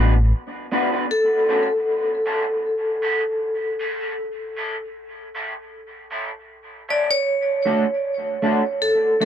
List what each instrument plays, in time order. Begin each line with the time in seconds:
Already playing: fingered electric bass A1, clean electric guitar B3 D4 F#4 B4
0.72 clean electric guitar B3 D4 F#4 B4
0.92 clean electric guitar B3 D4 F#4 B4
1.11 vibraphone A4
1.49 clean electric guitar A3 C#4 F#4 A4
2.26 clean electric guitar A3 C#4 F#4 A4
3.02 clean electric guitar A3 C#4 F#4 A4
3.79 clean electric guitar A3 C#4 F#4 A4
4.00 clean electric guitar A3 C#4 F#4 A4
4.56 clean electric guitar A3 C#4 E4 A4
5.35 clean electric guitar A3 C#4 E4 A4
6.11 clean electric guitar A3 C#4 E4 A4
6.89 clean electric guitar A3 C#4 E4 A4, vibraphone D5
7.11 vibraphone C#5
7.65 clean electric guitar A3 D4 F#4 A4
8.42 clean electric guitar A3 D4 F#4 A4
8.82 vibraphone A4
9.20 clean electric guitar A3 D4 F#4 A4, vibraphone A4